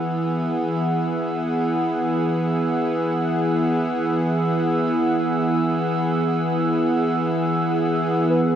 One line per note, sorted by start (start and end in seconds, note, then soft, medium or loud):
0.00 8.40 E3 medium
0.00 8.55 E3 medium
0.00 8.41 B3 medium
0.00 8.55 B3 medium
0.00 8.32 E4 medium
0.00 8.55 E4 medium
0.00 8.55 G#4 medium
0.00 8.55 F#5 medium
0.00 8.32 E6 medium
8.29 8.55 B3 medium
8.29 8.55 B4 medium